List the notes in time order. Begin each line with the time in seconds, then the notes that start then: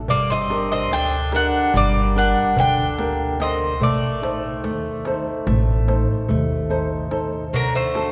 0.08 G1 G3 A#3 D5, darbuka dum
0.30 C4 D#5
0.50 D4 G4 A#4, darbuka tek
0.70 C4 D#5, darbuka tek
0.91 D2 D3 D4 G5, darbuka tek
1.32 D4 G4 A#4 F#5, darbuka tek
1.74 G1 G3 A#3 D5, darbuka tek, darbuka dum
1.95 darbuka tek
2.16 D4 G4 A#4 F#5
2.56 D2 D3 D4 G5, darbuka dum
2.78 darbuka tek
2.98 A#3 G4 A#4, darbuka tek
3.40 D3 C4 G4 A#4 D#5, darbuka tek
3.60 darbuka tek
3.81 A1 A3 D5, darbuka dum
4.22 D#4 A4 C5, darbuka tek
4.43 darbuka tek
4.64 D#2 A3, darbuka tek
5.05 D#4 A4 C5, darbuka tek
5.47 A1 A3, darbuka tek, darbuka dum
5.68 darbuka tek
5.87 D#4 A4 C5, darbuka tek
6.28 D#2 A3, darbuka dum
6.50 darbuka tek
6.70 D#4 A4 C5
7.11 D#4 A4 C5, darbuka tek
7.33 darbuka tek
7.53 D2 D3 F#3 A#4, darbuka dum
7.75 A3 C5
7.95 D4 F#4 A4, darbuka tek